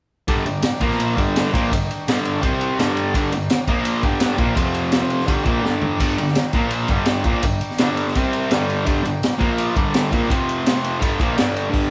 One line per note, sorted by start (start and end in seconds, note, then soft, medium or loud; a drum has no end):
0.28 0.45 G2 medium
0.28 0.44 D3 loud
0.28 0.46 G3 loud
0.28 0.82 D4 medium
0.28 0.82 G4 medium
0.28 0.81 A#4 medium
0.28 kick loud
0.28 ride medium
0.45 0.61 G2 medium
0.45 0.60 D3 medium
0.45 ride medium
0.62 snare loud
0.62 ride loud
0.80 1.16 A#2 medium
0.80 1.17 F3 medium
0.80 1.17 A#3 loud
0.80 1.18 A#3 medium
0.80 1.18 F4 medium
0.80 1.16 A#4 medium
0.80 kick medium
0.80 ride medium
0.91 snare soft
1.00 ride medium
1.17 1.52 G2 medium
1.17 1.52 D3 loud
1.17 1.53 G3 loud
1.17 2.40 D4 medium
1.17 2.40 G4 medium
1.17 2.40 A#4 medium
1.17 kick loud
1.17 ride medium
1.36 snare loud
1.36 ride loud
1.53 1.71 A#2 medium
1.53 1.71 F3 medium
1.53 1.71 A#3 loud
1.53 kick medium
1.53 ride medium
1.71 1.85 G2 medium
1.71 1.86 D3 medium
1.71 kick medium
1.71 ride loud
1.91 ride medium
2.08 2.43 G2 medium
2.08 2.42 D3 loud
2.08 2.41 G3 medium
2.08 snare loud
2.08 ride loud
2.24 2.41 F5 medium
2.24 ride medium
2.42 2.78 C3 medium
2.42 2.78 G3 loud
2.42 2.79 C4 medium
2.42 2.78 C4 medium
2.42 2.76 G4 medium
2.42 2.79 C5 medium
2.42 2.60 G5 medium
2.42 kick medium
2.42 ride medium
2.61 2.78 C6 medium
2.61 ride medium
2.77 3.14 G2 medium
2.77 3.14 D3 medium
2.77 3.14 G3 loud
2.77 3.65 D4 medium
2.77 3.65 G4 medium
2.77 3.65 A#4 medium
2.77 2.92 A#5 medium
2.77 snare loud
2.77 ride medium
2.94 3.12 A#5 medium
2.94 ride medium
3.14 3.31 G2 loud
3.14 3.32 D3 loud
3.14 3.32 G3 loud
3.14 kick medium
3.14 ride medium
3.32 3.47 G2 medium
3.32 3.47 D3 medium
3.32 ride medium
3.50 snare loud
3.50 ride loud
3.67 4.03 A#2 medium
3.67 4.03 F3 loud
3.67 4.04 A#3 medium
3.67 4.04 A#3 loud
3.67 4.04 F4 medium
3.67 4.03 A#4 medium
3.67 kick loud
3.67 ride medium
3.85 ride medium
4.03 4.39 G2 medium
4.03 4.36 D3 medium
4.03 4.38 G3 loud
4.03 4.57 D4 medium
4.03 4.57 G4 medium
4.03 4.58 A#4 medium
4.03 kick loud
4.03 ride medium
4.20 snare loud
4.20 ride medium
4.37 4.55 A#2 medium
4.37 4.55 F3 loud
4.37 4.56 A#3 loud
4.37 kick loud
4.37 ride medium
4.56 5.25 F2 medium
4.56 5.26 C3 loud
4.56 5.27 F3 loud
4.56 5.27 C4 medium
4.56 5.27 F4 medium
4.56 5.26 C5 medium
4.56 kick loud
4.56 ride loud
4.74 ride medium
4.92 snare loud
4.92 ride medium
5.10 ride medium
5.20 snare soft
5.26 5.45 G2 medium
5.26 5.44 D3 loud
5.26 5.44 G3 loud
5.26 6.51 D4 medium
5.26 6.51 G4 medium
5.26 6.51 A#4 medium
5.26 kick loud
5.26 ride medium
5.44 5.61 A#2 medium
5.44 5.62 F3 medium
5.44 5.63 A#3 medium
5.44 kick loud
5.44 ride medium
5.61 5.98 G2 medium
5.61 5.98 D3 medium
5.61 5.99 G3 loud
5.61 snare medium
5.82 floor tom medium
6.00 6.17 G2 medium
6.00 6.18 D3 loud
6.00 6.18 G3 loud
6.00 kick loud
6.00 crash medium
6.00 ride medium
6.18 6.32 G2 medium
6.18 6.33 D3 medium
6.18 ride medium
6.28 snare soft
6.35 snare loud
6.35 ride medium
6.52 6.89 A#2 loud
6.52 6.89 F3 loud
6.52 6.89 A#3 medium
6.52 6.90 A#3 loud
6.52 6.89 F4 medium
6.52 6.88 A#4 medium
6.52 kick loud
6.52 ride medium
6.71 ride medium
6.88 7.25 G2 medium
6.88 7.24 D3 medium
6.88 7.25 G3 loud
6.88 8.12 D4 medium
6.88 8.12 G4 medium
6.88 8.12 A#4 medium
6.88 kick loud
6.88 ride medium
7.06 snare loud
7.06 ride medium
7.24 7.42 A#2 medium
7.24 7.43 F3 loud
7.24 7.43 A#3 loud
7.24 kick loud
7.24 ride medium
7.43 7.58 G2 medium
7.43 7.58 D3 medium
7.43 kick medium
7.43 ride loud
7.61 ride medium
7.71 snare soft
7.78 8.14 G2 medium
7.78 8.15 D3 medium
7.78 8.15 G3 medium
7.78 snare loud
7.78 ride loud
7.97 ride medium
8.07 snare soft
8.15 8.51 C3 medium
8.15 8.51 G3 loud
8.15 8.51 C4 medium
8.15 8.49 G4 medium
8.15 8.52 C5 medium
8.15 kick loud
8.15 ride medium
8.33 ride medium
8.50 8.84 G2 medium
8.50 8.85 D3 medium
8.50 8.86 G3 medium
8.50 9.38 D4 medium
8.50 9.38 G4 medium
8.50 9.39 A#4 medium
8.50 snare loud
8.50 ride medium
8.70 ride medium
8.86 9.02 G2 medium
8.86 9.03 D3 loud
8.86 9.04 G3 loud
8.86 kick loud
8.86 ride medium
9.03 9.18 G2 medium
9.03 9.19 D3 medium
9.03 ride medium
9.23 snare loud
9.23 ride medium
9.38 9.74 A#2 medium
9.38 9.75 F3 loud
9.38 9.75 A#3 loud
9.38 9.76 A#3 medium
9.38 9.76 F4 medium
9.38 9.76 A#4 medium
9.38 kick loud
9.38 ride medium
9.58 ride medium
9.76 10.11 G2 medium
9.76 10.11 D3 medium
9.76 10.12 G3 loud
9.76 10.30 D4 medium
9.76 10.30 G4 medium
9.76 10.30 A#4 medium
9.76 kick loud
9.76 ride medium
9.94 snare loud
9.94 ride loud
10.12 10.30 A#2 medium
10.12 10.29 F3 loud
10.12 10.30 A#3 loud
10.12 kick medium
10.12 ride medium
10.30 10.99 F2 medium
10.30 11.00 C3 loud
10.30 11.00 F3 loud
10.30 11.01 C4 medium
10.30 11.01 F4 medium
10.30 11.01 C5 medium
10.30 kick loud
10.30 ride medium
10.49 ride medium
10.66 snare loud
10.66 ride loud
10.84 ride medium
10.99 11.18 G2 medium
10.99 11.18 D3 medium
10.99 11.18 G3 loud
10.99 11.71 D4 medium
10.99 11.71 G4 medium
10.99 11.72 A#4 medium
10.99 kick loud
10.99 ride medium
11.19 11.37 A#2 medium
11.19 11.37 F3 medium
11.19 11.37 A#3 loud
11.19 11.36 A#5 medium
11.19 kick loud
11.19 ride medium
11.36 11.69 G2 medium
11.36 11.70 D3 medium
11.36 11.70 G3 medium
11.36 11.71 D5 medium
11.36 snare loud
11.36 ride medium
11.56 ride medium
11.70 11.89 G2 medium
11.70 11.89 D3 loud
11.70 11.90 G3 medium
11.70 11.90 D4 medium
11.70 kick loud
11.74 11.90 G4 medium
11.74 11.90 A#4 medium
11.74 open hi-hat soft